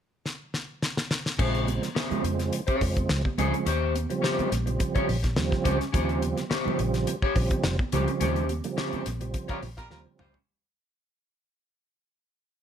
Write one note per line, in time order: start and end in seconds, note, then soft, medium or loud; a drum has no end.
0.26 snare medium
0.54 snare medium
0.82 snare medium
0.97 snare medium
1.11 snare loud
1.26 snare medium
1.38 1.78 A#1 loud
1.38 1.89 C#3 medium
1.38 1.90 F3 medium
1.38 1.90 G#3 medium
1.38 1.90 C4 medium
1.38 1.65 C#4 medium
1.38 1.66 G#4 medium
1.38 1.66 C5 medium
1.38 kick loud
1.38 crash medium
1.38 muted conga soft
1.55 closed hi-hat soft
1.67 closed hi-hat medium
1.67 muted conga soft
1.67 high conga medium
1.82 muted clean electric guitar stroke soft
1.82 snare soft
1.82 closed hi-hat soft
1.95 2.22 C#4 loud
1.95 2.22 G#4 loud
1.95 2.23 C5 medium
1.95 snare loud
1.95 muted conga soft
1.95 high conga medium
2.10 2.60 C#3 medium
2.10 2.61 F3 medium
2.10 2.61 G#3 medium
2.10 2.61 C4 loud
2.10 muted fingered electric bass stroke soft
2.10 closed hi-hat soft
2.10 high conga medium
2.10 low conga medium
2.24 2.49 F2 medium
2.24 muted clean electric guitar stroke soft
2.24 closed hi-hat medium
2.39 muted clean electric guitar stroke soft
2.39 snare soft
2.39 closed hi-hat soft
2.53 muted clean electric guitar stroke soft
2.53 closed hi-hat medium
2.53 muted conga soft
2.67 2.80 C#4 medium
2.67 2.81 G#4 medium
2.67 2.82 C#5 medium
2.67 muted fingered electric bass stroke soft
2.67 kick medium
2.67 closed hi-hat soft
2.81 3.06 F2 medium
2.81 3.22 C#3 medium
2.81 3.22 F3 medium
2.81 3.22 G#3 medium
2.81 3.22 C4 medium
2.81 muted clean electric guitar stroke soft
2.81 kick medium
2.81 open hi-hat medium
2.81 muted conga soft
2.96 muted clean electric guitar stroke soft
2.96 kick medium
2.96 closed hi-hat soft
2.96 high conga medium
3.09 3.23 C#2 medium
3.09 muted clean electric guitar stroke soft
3.09 snare loud
3.09 muted conga soft
3.25 muted clean electric guitar stroke soft
3.25 kick medium
3.25 high conga medium
3.38 3.51 C#2 medium
3.38 3.66 C#3 medium
3.38 3.66 F3 medium
3.38 3.67 G#3 medium
3.38 3.67 C4 loud
3.38 3.56 C#4 medium
3.38 3.53 G#4 medium
3.38 3.53 C5 medium
3.38 closed hi-hat medium
3.38 muted conga soft
3.38 low conga medium
3.54 muted clean electric guitar stroke soft
3.54 closed hi-hat soft
3.66 4.05 D#2 loud
3.66 3.93 C#4 medium
3.66 3.93 G4 medium
3.66 3.93 C5 medium
3.66 closed hi-hat medium
3.66 muted conga soft
3.95 closed hi-hat medium
3.95 muted conga soft
3.95 high conga medium
4.10 4.49 C#3 medium
4.10 4.50 F3 medium
4.10 4.50 G3 medium
4.10 4.50 C4 loud
4.10 muted clean electric guitar stroke medium
4.10 closed hi-hat soft
4.22 4.49 C#4 medium
4.22 4.49 G4 medium
4.22 4.50 C5 loud
4.22 snare loud
4.22 muted conga soft
4.22 high conga medium
4.39 muted fingered electric bass stroke soft
4.39 closed hi-hat soft
4.39 high conga medium
4.39 low conga medium
4.51 4.77 A#1 medium
4.51 muted clean electric guitar stroke soft
4.51 snare soft
4.51 closed hi-hat medium
4.66 5.16 C#3 medium
4.66 5.17 F3 medium
4.66 5.17 G3 medium
4.66 5.17 C4 loud
4.66 muted clean electric guitar stroke soft
4.66 closed hi-hat medium
4.79 muted clean electric guitar stroke soft
4.79 kick medium
4.79 closed hi-hat medium
4.79 muted conga soft
4.95 5.07 C#4 medium
4.95 5.07 G4 medium
4.95 5.08 C#5 medium
4.95 muted fingered electric bass stroke soft
4.95 kick medium
4.95 closed hi-hat soft
5.08 5.34 A#1 medium
5.08 muted clean electric guitar stroke soft
5.08 open hi-hat medium
5.23 muted clean electric guitar stroke soft
5.23 kick medium
5.23 snare soft
5.23 closed hi-hat soft
5.23 high conga medium
5.36 5.51 D#2 medium
5.36 5.78 C#3 medium
5.36 5.78 F3 medium
5.36 5.78 G3 medium
5.36 5.78 C4 loud
5.36 muted clean electric guitar stroke soft
5.36 snare loud
5.36 muted conga soft
5.51 muted clean electric guitar stroke soft
5.51 kick medium
5.51 snare soft
5.51 high conga medium
5.64 5.79 C#2 medium
5.64 5.82 C#4 medium
5.64 5.79 G4 medium
5.64 5.78 C5 medium
5.64 kick medium
5.64 closed hi-hat medium
5.64 muted conga soft
5.64 low conga medium
5.79 muted clean electric guitar stroke medium
5.79 snare soft
5.79 closed hi-hat soft
5.93 6.33 D#2 loud
5.93 6.44 C#3 medium
5.93 6.45 F3 medium
5.93 6.45 G3 medium
5.93 6.45 C4 loud
5.93 6.20 C#4 medium
5.93 6.20 G4 medium
5.93 6.20 C5 medium
5.93 kick loud
5.93 closed hi-hat medium
5.93 muted conga soft
6.09 closed hi-hat soft
6.22 closed hi-hat medium
6.22 muted conga soft
6.22 high conga medium
6.37 muted clean electric guitar stroke soft
6.37 snare soft
6.37 closed hi-hat soft
6.50 6.77 C#4 loud
6.50 6.77 G4 medium
6.50 6.77 C5 loud
6.50 snare loud
6.50 muted conga soft
6.50 high conga medium
6.65 7.15 C#3 loud
6.65 7.15 F3 medium
6.65 7.16 G3 medium
6.65 7.16 C4 loud
6.65 muted fingered electric bass stroke soft
6.65 high conga medium
6.65 low conga medium
6.78 7.05 A#1 medium
6.78 muted clean electric guitar stroke soft
6.78 closed hi-hat medium
6.78 muted conga soft
6.94 muted clean electric guitar stroke soft
6.94 snare soft
6.94 closed hi-hat soft
7.07 muted clean electric guitar stroke soft
7.07 closed hi-hat medium
7.07 muted conga soft
7.22 7.35 C#4 medium
7.22 7.35 G4 medium
7.22 7.37 C#5 medium
7.22 muted fingered electric bass stroke soft
7.22 kick loud
7.35 7.49 A#1 medium
7.35 7.76 C#3 medium
7.35 7.76 F3 medium
7.35 7.77 G3 medium
7.35 7.77 C4 loud
7.35 muted clean electric guitar stroke soft
7.35 kick loud
7.35 open hi-hat medium
7.50 muted clean electric guitar stroke soft
7.50 kick medium
7.50 closed hi-hat soft
7.50 high conga medium
7.64 7.78 F1 loud
7.64 muted clean electric guitar stroke soft
7.64 snare loud
7.64 muted conga soft
7.79 muted clean electric guitar stroke soft
7.79 kick loud
7.79 high conga medium
7.92 8.06 C#2 medium
7.92 8.43 C#3 loud
7.92 8.43 F3 medium
7.92 8.43 G3 medium
7.92 8.44 C4 loud
7.92 8.10 C#4 medium
7.92 8.08 G4 medium
7.92 8.07 C5 medium
7.92 closed hi-hat medium
7.92 muted conga soft
7.92 low conga medium
8.08 muted clean electric guitar stroke soft
8.08 closed hi-hat soft
8.20 8.60 D#2 loud
8.20 8.47 C#4 medium
8.20 8.47 G4 medium
8.20 8.48 C5 medium
8.20 closed hi-hat medium
8.20 muted conga soft
8.20 low conga medium
8.36 closed hi-hat soft
8.49 closed hi-hat medium
8.49 muted conga soft
8.49 high conga medium
8.64 9.04 C#3 medium
8.64 9.04 F3 medium
8.64 9.04 G3 medium
8.64 8.71 A#3 medium
8.64 muted clean electric guitar stroke soft
8.64 closed hi-hat medium
8.72 9.07 C4 medium
8.77 9.04 C#4 medium
8.77 9.04 G4 medium
8.77 9.04 C5 medium
8.77 snare loud
8.77 high conga medium
8.92 muted fingered electric bass stroke soft
8.92 closed hi-hat soft
8.92 high conga medium
8.92 low conga medium
9.06 9.32 A#1 loud
9.06 muted clean electric guitar stroke soft
9.06 snare soft
9.06 closed hi-hat loud
9.21 9.71 C#3 medium
9.21 9.71 F3 medium
9.21 9.71 G3 medium
9.21 9.71 C4 medium
9.21 muted clean electric guitar stroke medium
9.21 closed hi-hat medium
9.34 muted clean electric guitar stroke soft
9.34 kick medium
9.34 closed hi-hat medium
9.34 muted conga soft
9.48 9.58 G3 medium
9.48 9.61 C#4 medium
9.48 9.58 F4 medium
9.48 9.61 G4 medium
9.48 9.58 A#4 medium
9.48 9.62 C#5 medium
9.48 muted fingered electric bass stroke soft
9.48 kick medium
9.48 closed hi-hat soft
9.62 9.88 A#1 medium
9.62 muted clean electric guitar stroke medium
9.62 open hi-hat medium
9.62 muted conga soft
9.77 9.86 G3 loud
9.77 9.86 F4 loud
9.77 9.86 A#4 loud
9.77 muted clean electric guitar stroke soft
9.77 kick medium
9.77 snare soft
9.77 closed hi-hat soft
9.77 high conga medium
9.90 10.05 D#2 loud
9.90 10.32 C#3 medium
9.90 10.32 F3 medium
9.90 10.00 G3 medium
9.90 10.32 G3 medium
9.90 10.32 C4 loud
9.90 10.00 F4 medium
9.90 10.00 A#4 loud
9.90 muted clean electric guitar stroke soft
9.90 snare medium
9.90 muted conga soft
10.06 muted clean electric guitar stroke soft
10.06 high conga medium
10.19 10.33 C#2 medium
10.19 10.37 G3 medium
10.19 10.37 C#4 medium
10.19 10.37 F4 medium
10.19 10.34 G4 medium
10.19 10.37 C5 loud
10.19 10.34 C5 medium
10.19 mid tom medium
10.19 muted conga soft
10.19 low conga medium
10.34 muted clean electric guitar stroke medium
10.34 floor tom medium